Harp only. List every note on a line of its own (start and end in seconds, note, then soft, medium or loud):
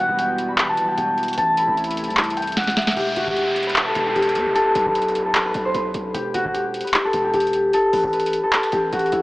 0.00 0.24 F#5 medium
0.00 0.35 A5 medium
0.00 0.48 B5 medium
0.18 0.88 G5 medium
0.48 1.57 B5 medium
0.69 1.37 A5 medium
0.89 0.98 G5 medium
0.98 2.37 G5 loud
1.38 2.07 A5 loud
1.58 1.77 B5 medium
1.78 3.13 B5 medium
2.08 3.53 A5 medium
2.37 2.63 G5 medium
2.57 3.03 F#5 medium
2.77 4.49 E5 medium
2.97 3.23 G4 loud
3.17 3.42 F#4 medium
3.36 4.06 G4 medium
3.67 4.75 B4 medium
3.86 4.55 A4 medium
4.06 4.15 G4 medium
4.16 6.14 G4 medium
4.55 5.25 A4 loud
4.75 4.95 B4 medium
4.95 5.45 B4 medium
5.26 7.04 A4 medium
5.45 5.71 B4 medium
5.65 5.81 C5 medium
5.75 6.84 B4 medium
6.14 6.40 G4 loud
6.34 6.60 F#4 medium
6.54 7.24 G4 medium
6.84 7.93 B4 medium
7.05 7.73 A4 medium
7.24 7.33 G4 medium
7.34 8.72 G4 loud
7.74 8.43 A4 loud
7.93 8.13 B4 medium
8.13 9.22 B4 medium
8.43 9.22 A4 medium
8.73 8.99 G4 medium
8.93 9.22 F#4 medium
9.12 9.22 E4 medium